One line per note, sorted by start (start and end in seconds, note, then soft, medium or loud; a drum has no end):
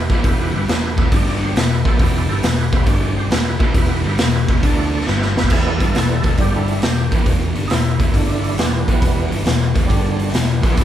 0.06 0.20 B3 medium
0.06 0.20 E4 medium
0.06 0.21 G4 medium
0.06 0.21 B4 loud
0.06 kick medium
0.10 0.23 A#1 loud
0.10 0.24 A#2 medium
0.10 0.24 F3 medium
0.10 0.24 A#3 loud
0.23 0.51 E1 loud
0.23 0.53 E2 loud
0.23 0.53 B2 loud
0.23 0.53 E3 loud
0.23 0.49 B3 loud
0.23 0.50 E4 loud
0.23 0.49 G4 loud
0.23 0.50 B4 loud
0.23 kick loud
0.23 open hi-hat medium
0.52 0.66 G1 medium
0.52 0.66 G2 medium
0.52 0.66 D3 loud
0.52 0.67 G3 loud
0.52 0.65 B3 loud
0.52 0.65 E4 loud
0.52 0.65 G4 loud
0.52 0.66 B4 loud
0.66 0.95 E1 medium
0.66 0.91 E2 medium
0.66 0.91 B2 medium
0.66 0.93 B3 loud
0.66 0.94 E4 medium
0.66 0.94 G4 medium
0.66 0.94 B4 loud
0.66 snare loud
0.66 open hi-hat medium
0.96 1.11 E1 loud
0.96 1.10 E2 medium
0.96 1.11 B2 medium
0.96 1.11 E3 medium
0.96 1.10 B3 medium
0.96 1.10 E4 medium
0.96 1.10 G4 medium
0.96 1.11 B4 loud
0.96 kick loud
1.11 1.52 G1 medium
1.11 1.55 G2 medium
1.11 1.55 D3 loud
1.11 1.55 G3 loud
1.11 1.38 G3 medium
1.11 1.39 D4 medium
1.11 1.39 G4 medium
1.11 kick loud
1.11 open hi-hat medium
1.16 1.40 D5 loud
1.28 snare soft
1.43 1.54 G3 medium
1.43 1.55 D4 medium
1.43 1.54 G4 medium
1.43 1.55 C5 loud
1.55 1.83 E1 medium
1.55 1.79 E2 medium
1.55 1.79 B2 medium
1.55 1.81 B3 loud
1.55 1.81 E4 loud
1.55 1.82 G4 loud
1.55 1.82 B4 loud
1.55 snare loud
1.55 open hi-hat medium
1.85 1.99 A#1 medium
1.85 1.98 A#2 medium
1.85 1.99 F3 loud
1.85 1.99 A#3 loud
1.85 1.97 B3 medium
1.85 1.98 E4 medium
1.85 1.98 G4 medium
1.85 1.99 A4 loud
1.85 kick loud
1.99 2.27 E1 loud
1.99 2.28 E2 loud
1.99 2.28 B2 loud
1.99 2.28 E3 loud
1.99 2.25 B3 loud
1.99 2.25 E4 loud
1.99 2.26 G4 loud
1.99 2.26 D5 loud
1.99 kick loud
1.99 open hi-hat medium
2.28 2.42 G1 medium
2.28 2.42 G2 loud
2.28 2.43 D3 loud
2.28 2.43 G3 loud
2.28 2.41 B3 loud
2.28 2.41 E4 loud
2.28 2.41 G4 loud
2.28 2.41 A4 loud
2.42 2.70 E1 medium
2.42 2.66 E2 medium
2.42 2.67 B2 medium
2.42 2.68 B3 medium
2.42 2.68 E4 medium
2.42 2.69 G4 medium
2.42 2.69 B4 loud
2.42 snare loud
2.42 open hi-hat medium
2.71 2.86 E1 loud
2.71 2.85 E2 medium
2.71 2.85 B2 medium
2.71 2.86 E3 medium
2.71 2.84 B3 medium
2.71 2.85 E4 medium
2.71 2.84 G4 medium
2.71 2.85 B4 loud
2.71 kick loud
2.84 3.28 G1 medium
2.84 3.29 G2 medium
2.84 3.29 D3 loud
2.84 3.11 G3 medium
2.84 3.30 G3 loud
2.84 3.11 D4 medium
2.84 3.12 G4 medium
2.84 3.12 D5 loud
2.84 kick loud
2.84 open hi-hat medium
3.17 3.29 G3 medium
3.17 3.29 D4 medium
3.17 3.29 G4 medium
3.17 3.29 C5 loud
3.29 3.58 E1 medium
3.29 3.54 E2 medium
3.29 3.54 B2 medium
3.29 3.57 B3 loud
3.29 3.57 E4 loud
3.29 3.57 G4 loud
3.29 3.57 B4 loud
3.29 snare loud
3.29 open hi-hat medium
3.58 3.73 A#1 loud
3.58 3.73 A#2 medium
3.58 3.74 F3 loud
3.58 3.74 A#3 loud
3.58 3.72 B3 medium
3.58 3.72 E4 medium
3.58 3.73 G4 medium
3.58 3.73 B4 loud
3.58 kick loud
3.74 4.02 E1 loud
3.74 4.03 E2 loud
3.74 4.03 B2 loud
3.74 4.04 E3 loud
3.74 4.00 B3 loud
3.74 4.01 E4 loud
3.74 4.01 G4 loud
3.74 4.02 B4 loud
3.74 kick loud
3.74 open hi-hat medium
4.05 4.18 G1 medium
4.05 4.18 G2 loud
4.05 4.19 D3 medium
4.05 4.18 G3 loud
4.05 4.17 B3 loud
4.05 4.18 E4 loud
4.05 4.18 G4 loud
4.05 4.19 B4 loud
4.18 4.47 E1 medium
4.18 4.43 E2 soft
4.18 4.43 B2 medium
4.18 4.46 B3 medium
4.18 4.46 E4 medium
4.18 snare loud
4.18 open hi-hat medium
4.22 4.46 G4 medium
4.22 4.47 B4 loud
4.47 4.61 E1 loud
4.47 4.62 E2 medium
4.47 4.60 B2 medium
4.47 4.61 E3 medium
4.47 4.61 B3 medium
4.47 4.61 E4 medium
4.47 4.61 G4 medium
4.47 4.61 B4 medium
4.47 kick loud
4.61 5.03 D2 medium
4.61 5.05 D3 medium
4.61 5.05 A3 medium
4.61 4.89 A3 loud
4.61 5.06 D4 loud
4.61 kick loud
4.61 open hi-hat medium
4.65 4.90 D4 medium
4.65 4.90 A4 medium
4.65 4.90 D5 loud
4.94 5.05 A3 medium
4.94 5.06 D4 medium
4.94 5.07 A4 medium
4.94 5.07 D5 loud
5.01 snare soft
5.07 5.35 G1 loud
5.07 5.35 G2 loud
5.07 5.35 D3 medium
5.07 5.36 G3 loud
5.07 5.33 B3 loud
5.07 5.33 E4 medium
5.07 5.33 G4 loud
5.07 5.33 B4 loud
5.07 snare medium
5.22 snare medium
5.36 5.50 E1 medium
5.36 5.50 E2 medium
5.36 5.50 B2 medium
5.36 5.50 E3 medium
5.36 5.49 B3 medium
5.36 5.50 E4 medium
5.36 5.50 G4 medium
5.36 5.50 B4 medium
5.36 snare medium
5.44 kick medium
5.50 5.78 E1 loud
5.50 5.79 E2 medium
5.50 5.80 B2 loud
5.50 5.80 E3 loud
5.50 6.22 E3 medium
5.50 5.55 G#4 medium
5.50 kick loud
5.50 crash loud
5.55 6.23 G3 soft
5.55 6.23 B3 medium
5.55 6.39 A4 loud
5.80 5.94 G1 medium
5.80 5.94 G2 medium
5.80 5.94 D3 medium
5.80 5.94 G3 medium
5.80 kick loud
5.80 open hi-hat medium
5.95 6.23 E1 medium
5.95 6.18 E2 medium
5.95 6.18 B2 medium
5.95 snare loud
5.95 open hi-hat medium
6.23 6.38 E1 medium
6.23 6.37 E2 medium
6.23 6.37 B2 medium
6.23 6.37 E3 medium
6.23 kick loud
6.23 open hi-hat medium
6.37 6.79 G1 medium
6.37 6.81 G2 medium
6.37 6.81 D3 medium
6.37 6.80 D3 medium
6.37 6.82 G3 loud
6.37 6.81 G3 medium
6.37 6.81 D4 medium
6.37 6.54 G4 medium
6.37 kick loud
6.37 open hi-hat medium
6.56 6.68 E4 medium
6.68 6.83 E4 medium
6.68 open hi-hat medium
6.81 7.10 E1 medium
6.81 7.05 E2 medium
6.81 7.05 B2 medium
6.81 7.26 G4 medium
6.81 snare loud
6.81 open hi-hat medium
7.11 7.25 A#1 medium
7.11 7.25 A#2 medium
7.11 7.36 E3 soft
7.11 7.26 F3 loud
7.11 7.37 G3 soft
7.11 7.26 A#3 medium
7.11 7.37 B3 medium
7.11 kick loud
7.11 open hi-hat medium
7.26 7.54 E1 loud
7.26 7.55 E2 medium
7.26 7.55 B2 loud
7.26 7.56 E3 loud
7.26 kick loud
7.26 open hi-hat medium
7.55 7.69 G1 medium
7.55 7.70 G2 loud
7.55 7.70 D3 loud
7.55 7.70 G3 loud
7.55 open hi-hat soft
7.68 7.98 E1 medium
7.68 7.94 E2 medium
7.68 7.94 B2 medium
7.68 7.71 D#4 medium
7.68 8.56 E4 loud
7.68 snare loud
7.68 open hi-hat medium
8.00 8.13 E1 loud
8.00 8.13 E2 medium
8.00 8.14 B2 medium
8.00 8.14 E3 medium
8.00 kick loud
8.00 open hi-hat medium
8.14 8.55 G1 medium
8.14 8.58 G2 medium
8.14 8.56 D3 medium
8.14 8.58 D3 medium
8.14 8.54 G3 medium
8.14 8.58 G3 loud
8.14 8.57 D4 medium
8.14 kick medium
8.14 open hi-hat medium
8.44 open hi-hat medium
8.55 8.86 E1 medium
8.55 8.82 E2 medium
8.55 8.82 B2 medium
8.55 9.42 E3 medium
8.55 9.44 G3 soft
8.55 8.72 B3 medium
8.55 8.72 D4 medium
8.55 snare loud
8.55 open hi-hat medium
8.73 8.86 B3 medium
8.87 9.01 A#1 medium
8.87 9.00 A#2 medium
8.87 9.01 F3 medium
8.87 9.02 A#3 loud
8.87 9.29 B3 loud
8.87 kick loud
8.87 open hi-hat medium
9.00 9.29 E1 loud
9.00 9.30 E2 loud
9.00 9.30 B2 loud
9.00 9.30 E3 loud
9.00 kick loud
9.00 open hi-hat medium
9.30 9.45 G1 medium
9.30 9.44 G2 loud
9.30 9.45 D3 loud
9.30 9.46 G3 loud
9.30 open hi-hat medium
9.44 9.74 E1 medium
9.44 9.69 E2 medium
9.44 9.70 B2 medium
9.44 9.71 E3 medium
9.44 9.72 G3 soft
9.44 9.72 B3 medium
9.44 snare loud
9.44 open hi-hat medium
9.75 9.88 E1 loud
9.75 9.88 E2 medium
9.75 9.88 B2 medium
9.75 9.88 E3 medium
9.75 kick loud
9.75 open hi-hat medium
9.86 10.31 G1 medium
9.86 10.32 G2 medium
9.86 10.29 D3 medium
9.86 10.33 D3 medium
9.86 10.30 G3 medium
9.86 10.33 G3 loud
9.86 10.30 D4 medium
9.86 kick loud
9.90 open hi-hat medium
10.19 open hi-hat medium
10.28 10.84 E3 medium
10.28 snare soft
10.32 10.61 E1 medium
10.32 10.57 E2 medium
10.32 10.58 B2 medium
10.32 10.84 G3 medium
10.32 10.84 B3 medium
10.32 snare loud
10.32 open hi-hat medium
10.62 10.77 A#1 loud
10.62 10.76 A#2 medium
10.62 10.77 F3 loud
10.62 10.77 A#3 loud
10.62 kick loud
10.62 open hi-hat medium
10.72 10.76 G#4 medium
10.77 10.84 E1 loud
10.77 10.84 E2 loud
10.77 10.84 B2 loud
10.77 10.84 E3 loud
10.77 10.84 A4 loud
10.77 kick loud
10.77 open hi-hat medium